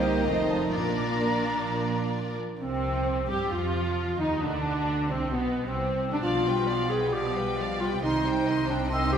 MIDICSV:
0, 0, Header, 1, 10, 480
1, 0, Start_track
1, 0, Key_signature, -3, "minor"
1, 0, Tempo, 464756
1, 766, Time_signature, 4, 2, 24, 8
1, 3173, Tempo, 448430
1, 9709, End_track
2, 0, Start_track
2, 0, Title_t, "Flute"
2, 0, Program_c, 0, 73
2, 0, Note_on_c, 0, 79, 66
2, 509, Note_off_c, 0, 79, 0
2, 515, Note_on_c, 0, 81, 47
2, 577, Note_off_c, 0, 81, 0
2, 763, Note_on_c, 0, 82, 57
2, 2188, Note_off_c, 0, 82, 0
2, 9709, End_track
3, 0, Start_track
3, 0, Title_t, "Violin section"
3, 0, Program_c, 1, 48
3, 0, Note_on_c, 1, 75, 50
3, 761, Note_off_c, 1, 75, 0
3, 764, Note_on_c, 1, 74, 42
3, 2424, Note_off_c, 1, 74, 0
3, 2700, Note_on_c, 1, 60, 47
3, 3374, Note_off_c, 1, 60, 0
3, 3419, Note_on_c, 1, 67, 46
3, 3651, Note_on_c, 1, 65, 44
3, 3654, Note_off_c, 1, 67, 0
3, 4381, Note_off_c, 1, 65, 0
3, 4386, Note_on_c, 1, 63, 46
3, 4622, Note_off_c, 1, 63, 0
3, 4622, Note_on_c, 1, 62, 50
3, 5347, Note_on_c, 1, 60, 46
3, 5348, Note_off_c, 1, 62, 0
3, 5586, Note_off_c, 1, 60, 0
3, 5602, Note_on_c, 1, 59, 43
3, 5950, Note_on_c, 1, 60, 43
3, 5961, Note_off_c, 1, 59, 0
3, 6426, Note_on_c, 1, 62, 46
3, 6428, Note_off_c, 1, 60, 0
3, 6551, Note_off_c, 1, 62, 0
3, 6556, Note_on_c, 1, 77, 39
3, 6779, Note_off_c, 1, 77, 0
3, 6797, Note_on_c, 1, 79, 37
3, 7036, Note_off_c, 1, 79, 0
3, 7041, Note_on_c, 1, 77, 37
3, 7279, Note_off_c, 1, 77, 0
3, 7280, Note_on_c, 1, 79, 34
3, 7520, Note_off_c, 1, 79, 0
3, 7528, Note_on_c, 1, 77, 38
3, 7747, Note_off_c, 1, 77, 0
3, 7762, Note_on_c, 1, 79, 40
3, 8000, Note_off_c, 1, 79, 0
3, 8011, Note_on_c, 1, 77, 37
3, 8243, Note_off_c, 1, 77, 0
3, 8256, Note_on_c, 1, 79, 39
3, 8484, Note_off_c, 1, 79, 0
3, 8485, Note_on_c, 1, 84, 45
3, 8699, Note_off_c, 1, 84, 0
3, 8730, Note_on_c, 1, 79, 42
3, 8954, Note_on_c, 1, 84, 39
3, 8956, Note_off_c, 1, 79, 0
3, 9185, Note_off_c, 1, 84, 0
3, 9186, Note_on_c, 1, 79, 43
3, 9403, Note_on_c, 1, 84, 47
3, 9420, Note_off_c, 1, 79, 0
3, 9631, Note_off_c, 1, 84, 0
3, 9636, Note_on_c, 1, 79, 48
3, 9709, Note_off_c, 1, 79, 0
3, 9709, End_track
4, 0, Start_track
4, 0, Title_t, "Violin section"
4, 0, Program_c, 2, 48
4, 0, Note_on_c, 2, 67, 41
4, 0, Note_on_c, 2, 72, 39
4, 268, Note_off_c, 2, 72, 0
4, 276, Note_on_c, 2, 65, 41
4, 281, Note_on_c, 2, 72, 36
4, 283, Note_off_c, 2, 67, 0
4, 747, Note_off_c, 2, 65, 0
4, 754, Note_off_c, 2, 72, 0
4, 759, Note_on_c, 2, 65, 40
4, 766, Note_on_c, 2, 70, 38
4, 2445, Note_off_c, 2, 65, 0
4, 2448, Note_off_c, 2, 70, 0
4, 2692, Note_on_c, 2, 60, 50
4, 3370, Note_off_c, 2, 60, 0
4, 3421, Note_on_c, 2, 67, 51
4, 3642, Note_on_c, 2, 65, 45
4, 3655, Note_off_c, 2, 67, 0
4, 4361, Note_off_c, 2, 65, 0
4, 4388, Note_on_c, 2, 63, 41
4, 4620, Note_on_c, 2, 62, 50
4, 4623, Note_off_c, 2, 63, 0
4, 5333, Note_off_c, 2, 62, 0
4, 5351, Note_on_c, 2, 60, 42
4, 5588, Note_off_c, 2, 60, 0
4, 5613, Note_on_c, 2, 59, 42
4, 5959, Note_off_c, 2, 59, 0
4, 5970, Note_on_c, 2, 60, 48
4, 6437, Note_off_c, 2, 60, 0
4, 6450, Note_on_c, 2, 62, 41
4, 6563, Note_off_c, 2, 62, 0
4, 6567, Note_on_c, 2, 74, 38
4, 6785, Note_off_c, 2, 74, 0
4, 6814, Note_on_c, 2, 71, 34
4, 7043, Note_on_c, 2, 74, 38
4, 7045, Note_off_c, 2, 71, 0
4, 7280, Note_off_c, 2, 74, 0
4, 7286, Note_on_c, 2, 71, 39
4, 7520, Note_on_c, 2, 74, 34
4, 7523, Note_off_c, 2, 71, 0
4, 7743, Note_off_c, 2, 74, 0
4, 7754, Note_on_c, 2, 71, 41
4, 7995, Note_off_c, 2, 71, 0
4, 7998, Note_on_c, 2, 74, 43
4, 8236, Note_off_c, 2, 74, 0
4, 8236, Note_on_c, 2, 71, 37
4, 8474, Note_off_c, 2, 71, 0
4, 8486, Note_on_c, 2, 75, 43
4, 8700, Note_off_c, 2, 75, 0
4, 8717, Note_on_c, 2, 72, 39
4, 8944, Note_on_c, 2, 75, 40
4, 8949, Note_off_c, 2, 72, 0
4, 9167, Note_on_c, 2, 72, 45
4, 9180, Note_off_c, 2, 75, 0
4, 9399, Note_on_c, 2, 75, 39
4, 9410, Note_off_c, 2, 72, 0
4, 9629, Note_off_c, 2, 75, 0
4, 9647, Note_on_c, 2, 72, 42
4, 9709, Note_off_c, 2, 72, 0
4, 9709, End_track
5, 0, Start_track
5, 0, Title_t, "Clarinet"
5, 0, Program_c, 3, 71
5, 2696, Note_on_c, 3, 60, 54
5, 3372, Note_off_c, 3, 60, 0
5, 3409, Note_on_c, 3, 67, 54
5, 3649, Note_off_c, 3, 67, 0
5, 3665, Note_on_c, 3, 65, 59
5, 4369, Note_off_c, 3, 65, 0
5, 4375, Note_on_c, 3, 63, 57
5, 4619, Note_on_c, 3, 62, 62
5, 4635, Note_off_c, 3, 63, 0
5, 5348, Note_on_c, 3, 60, 53
5, 5364, Note_off_c, 3, 62, 0
5, 5584, Note_on_c, 3, 59, 55
5, 5600, Note_off_c, 3, 60, 0
5, 5943, Note_off_c, 3, 59, 0
5, 5949, Note_on_c, 3, 60, 49
5, 6427, Note_off_c, 3, 60, 0
5, 6445, Note_on_c, 3, 62, 47
5, 6498, Note_off_c, 3, 62, 0
5, 6554, Note_on_c, 3, 65, 62
5, 7264, Note_on_c, 3, 68, 59
5, 7280, Note_off_c, 3, 65, 0
5, 7527, Note_on_c, 3, 67, 59
5, 7543, Note_off_c, 3, 68, 0
5, 8231, Note_off_c, 3, 67, 0
5, 8237, Note_on_c, 3, 65, 60
5, 8344, Note_off_c, 3, 65, 0
5, 8470, Note_on_c, 3, 63, 67
5, 9165, Note_off_c, 3, 63, 0
5, 9182, Note_on_c, 3, 62, 59
5, 9413, Note_off_c, 3, 62, 0
5, 9425, Note_on_c, 3, 60, 69
5, 9643, Note_off_c, 3, 60, 0
5, 9650, Note_on_c, 3, 67, 78
5, 9709, Note_off_c, 3, 67, 0
5, 9709, End_track
6, 0, Start_track
6, 0, Title_t, "Harp"
6, 0, Program_c, 4, 46
6, 0, Note_on_c, 4, 48, 42
6, 34, Note_on_c, 4, 63, 31
6, 45, Note_on_c, 4, 70, 35
6, 272, Note_on_c, 4, 41, 41
6, 300, Note_off_c, 4, 48, 0
6, 300, Note_off_c, 4, 70, 0
6, 501, Note_off_c, 4, 63, 0
6, 513, Note_on_c, 4, 63, 31
6, 520, Note_on_c, 4, 69, 32
6, 755, Note_on_c, 4, 46, 34
6, 779, Note_off_c, 4, 41, 0
6, 780, Note_off_c, 4, 63, 0
6, 783, Note_off_c, 4, 69, 0
6, 995, Note_on_c, 4, 53, 28
6, 1240, Note_on_c, 4, 62, 26
6, 1471, Note_off_c, 4, 53, 0
6, 1483, Note_on_c, 4, 53, 27
6, 1719, Note_off_c, 4, 46, 0
6, 1731, Note_on_c, 4, 46, 29
6, 1973, Note_on_c, 4, 58, 25
6, 2203, Note_off_c, 4, 62, 0
6, 2215, Note_on_c, 4, 62, 28
6, 2449, Note_off_c, 4, 53, 0
6, 2462, Note_on_c, 4, 53, 29
6, 2704, Note_on_c, 4, 48, 39
6, 2714, Note_off_c, 4, 46, 0
6, 2714, Note_off_c, 4, 58, 0
6, 2715, Note_off_c, 4, 62, 0
6, 2718, Note_off_c, 4, 53, 0
6, 2936, Note_on_c, 4, 67, 32
6, 3417, Note_off_c, 4, 67, 0
6, 3430, Note_on_c, 4, 67, 30
6, 3674, Note_on_c, 4, 60, 32
6, 3894, Note_off_c, 4, 67, 0
6, 3907, Note_on_c, 4, 67, 35
6, 4154, Note_on_c, 4, 75, 31
6, 4388, Note_off_c, 4, 67, 0
6, 4401, Note_on_c, 4, 67, 36
6, 4638, Note_on_c, 4, 47, 41
6, 4647, Note_off_c, 4, 48, 0
6, 4651, Note_off_c, 4, 75, 0
6, 4653, Note_off_c, 4, 60, 0
6, 4860, Note_off_c, 4, 67, 0
6, 4873, Note_on_c, 4, 67, 36
6, 5116, Note_on_c, 4, 74, 32
6, 5341, Note_off_c, 4, 67, 0
6, 5354, Note_on_c, 4, 67, 33
6, 5589, Note_off_c, 4, 47, 0
6, 5602, Note_on_c, 4, 47, 33
6, 5840, Note_on_c, 4, 55, 32
6, 6074, Note_off_c, 4, 74, 0
6, 6087, Note_on_c, 4, 74, 35
6, 6308, Note_off_c, 4, 67, 0
6, 6321, Note_on_c, 4, 67, 40
6, 6542, Note_off_c, 4, 47, 0
6, 6555, Note_on_c, 4, 47, 41
6, 6785, Note_off_c, 4, 67, 0
6, 6798, Note_on_c, 4, 67, 36
6, 7027, Note_off_c, 4, 74, 0
6, 7039, Note_on_c, 4, 74, 31
6, 7265, Note_off_c, 4, 67, 0
6, 7278, Note_on_c, 4, 67, 38
6, 7506, Note_off_c, 4, 47, 0
6, 7519, Note_on_c, 4, 47, 37
6, 7743, Note_off_c, 4, 55, 0
6, 7755, Note_on_c, 4, 55, 37
6, 7977, Note_off_c, 4, 74, 0
6, 7990, Note_on_c, 4, 74, 37
6, 8210, Note_off_c, 4, 67, 0
6, 8223, Note_on_c, 4, 67, 41
6, 8465, Note_on_c, 4, 48, 48
6, 8489, Note_off_c, 4, 74, 0
6, 8493, Note_off_c, 4, 47, 0
6, 8690, Note_off_c, 4, 67, 0
6, 8703, Note_on_c, 4, 67, 39
6, 8932, Note_on_c, 4, 75, 35
6, 9157, Note_off_c, 4, 67, 0
6, 9170, Note_on_c, 4, 67, 40
6, 9405, Note_on_c, 4, 60, 40
6, 9622, Note_off_c, 4, 67, 0
6, 9635, Note_on_c, 4, 67, 38
6, 9709, Note_off_c, 4, 48, 0
6, 9709, Note_off_c, 4, 55, 0
6, 9709, Note_off_c, 4, 60, 0
6, 9709, Note_off_c, 4, 67, 0
6, 9709, Note_off_c, 4, 75, 0
6, 9709, End_track
7, 0, Start_track
7, 0, Title_t, "French horn section"
7, 0, Program_c, 5, 60
7, 0, Note_on_c, 5, 58, 38
7, 0, Note_on_c, 5, 63, 38
7, 268, Note_off_c, 5, 63, 0
7, 272, Note_on_c, 5, 57, 35
7, 275, Note_off_c, 5, 58, 0
7, 281, Note_on_c, 5, 63, 39
7, 754, Note_off_c, 5, 63, 0
7, 760, Note_off_c, 5, 57, 0
7, 763, Note_on_c, 5, 62, 35
7, 765, Note_on_c, 5, 58, 38
7, 2457, Note_off_c, 5, 62, 0
7, 2458, Note_off_c, 5, 58, 0
7, 9709, End_track
8, 0, Start_track
8, 0, Title_t, "Viola section"
8, 0, Program_c, 6, 48
8, 0, Note_on_c, 6, 58, 42
8, 0, Note_on_c, 6, 63, 46
8, 265, Note_off_c, 6, 63, 0
8, 270, Note_off_c, 6, 58, 0
8, 276, Note_on_c, 6, 57, 37
8, 277, Note_on_c, 6, 63, 39
8, 752, Note_off_c, 6, 63, 0
8, 756, Note_on_c, 6, 58, 39
8, 758, Note_on_c, 6, 62, 42
8, 762, Note_off_c, 6, 57, 0
8, 2477, Note_off_c, 6, 58, 0
8, 2479, Note_off_c, 6, 62, 0
8, 2696, Note_on_c, 6, 60, 43
8, 3372, Note_off_c, 6, 60, 0
8, 3412, Note_on_c, 6, 67, 48
8, 3655, Note_off_c, 6, 67, 0
8, 3659, Note_on_c, 6, 65, 50
8, 4370, Note_off_c, 6, 65, 0
8, 4384, Note_on_c, 6, 63, 46
8, 4620, Note_off_c, 6, 63, 0
8, 4626, Note_on_c, 6, 62, 50
8, 5350, Note_off_c, 6, 62, 0
8, 5351, Note_on_c, 6, 60, 47
8, 5593, Note_off_c, 6, 60, 0
8, 5593, Note_on_c, 6, 59, 55
8, 5948, Note_on_c, 6, 60, 45
8, 5956, Note_off_c, 6, 59, 0
8, 6429, Note_on_c, 6, 62, 45
8, 6436, Note_off_c, 6, 60, 0
8, 6546, Note_on_c, 6, 53, 38
8, 6552, Note_off_c, 6, 62, 0
8, 6774, Note_off_c, 6, 53, 0
8, 6789, Note_on_c, 6, 55, 37
8, 7032, Note_off_c, 6, 55, 0
8, 7036, Note_on_c, 6, 53, 36
8, 7267, Note_on_c, 6, 55, 37
8, 7277, Note_off_c, 6, 53, 0
8, 7512, Note_on_c, 6, 53, 48
8, 7513, Note_off_c, 6, 55, 0
8, 7739, Note_off_c, 6, 53, 0
8, 7748, Note_on_c, 6, 55, 43
8, 7988, Note_on_c, 6, 53, 37
8, 7993, Note_off_c, 6, 55, 0
8, 8231, Note_off_c, 6, 53, 0
8, 8232, Note_on_c, 6, 55, 39
8, 8466, Note_on_c, 6, 51, 41
8, 8472, Note_off_c, 6, 55, 0
8, 8689, Note_off_c, 6, 51, 0
8, 8707, Note_on_c, 6, 55, 43
8, 8944, Note_on_c, 6, 51, 41
8, 8945, Note_off_c, 6, 55, 0
8, 9180, Note_off_c, 6, 51, 0
8, 9193, Note_on_c, 6, 55, 43
8, 9423, Note_off_c, 6, 55, 0
8, 9423, Note_on_c, 6, 51, 50
8, 9642, Note_off_c, 6, 51, 0
8, 9661, Note_on_c, 6, 55, 44
8, 9709, Note_off_c, 6, 55, 0
8, 9709, End_track
9, 0, Start_track
9, 0, Title_t, "Cello section"
9, 0, Program_c, 7, 48
9, 0, Note_on_c, 7, 36, 46
9, 271, Note_off_c, 7, 36, 0
9, 275, Note_on_c, 7, 41, 40
9, 761, Note_off_c, 7, 41, 0
9, 764, Note_on_c, 7, 46, 39
9, 2482, Note_off_c, 7, 46, 0
9, 2700, Note_on_c, 7, 48, 49
9, 3374, Note_off_c, 7, 48, 0
9, 3413, Note_on_c, 7, 55, 46
9, 3648, Note_on_c, 7, 53, 50
9, 3656, Note_off_c, 7, 55, 0
9, 4364, Note_off_c, 7, 53, 0
9, 4382, Note_on_c, 7, 51, 41
9, 4620, Note_off_c, 7, 51, 0
9, 4629, Note_on_c, 7, 50, 47
9, 5348, Note_on_c, 7, 48, 48
9, 5352, Note_off_c, 7, 50, 0
9, 5591, Note_off_c, 7, 48, 0
9, 5591, Note_on_c, 7, 47, 46
9, 5955, Note_off_c, 7, 47, 0
9, 5958, Note_on_c, 7, 48, 43
9, 6434, Note_on_c, 7, 50, 46
9, 6441, Note_off_c, 7, 48, 0
9, 6557, Note_off_c, 7, 50, 0
9, 6566, Note_on_c, 7, 47, 41
9, 8434, Note_off_c, 7, 47, 0
9, 8474, Note_on_c, 7, 48, 50
9, 9709, Note_off_c, 7, 48, 0
9, 9709, End_track
10, 0, Start_track
10, 0, Title_t, "Double bass section"
10, 0, Program_c, 8, 48
10, 0, Note_on_c, 8, 36, 42
10, 277, Note_off_c, 8, 36, 0
10, 281, Note_on_c, 8, 29, 45
10, 764, Note_off_c, 8, 29, 0
10, 765, Note_on_c, 8, 34, 37
10, 2482, Note_off_c, 8, 34, 0
10, 2701, Note_on_c, 8, 36, 46
10, 3374, Note_off_c, 8, 36, 0
10, 3415, Note_on_c, 8, 43, 45
10, 3657, Note_off_c, 8, 43, 0
10, 3663, Note_on_c, 8, 41, 50
10, 4372, Note_off_c, 8, 41, 0
10, 4383, Note_on_c, 8, 39, 45
10, 4620, Note_off_c, 8, 39, 0
10, 4635, Note_on_c, 8, 38, 50
10, 5354, Note_on_c, 8, 36, 43
10, 5355, Note_off_c, 8, 38, 0
10, 5593, Note_on_c, 8, 35, 42
10, 5594, Note_off_c, 8, 36, 0
10, 5956, Note_off_c, 8, 35, 0
10, 5962, Note_on_c, 8, 36, 43
10, 6443, Note_off_c, 8, 36, 0
10, 6568, Note_on_c, 8, 35, 45
10, 8435, Note_off_c, 8, 35, 0
10, 8472, Note_on_c, 8, 36, 47
10, 9709, Note_off_c, 8, 36, 0
10, 9709, End_track
0, 0, End_of_file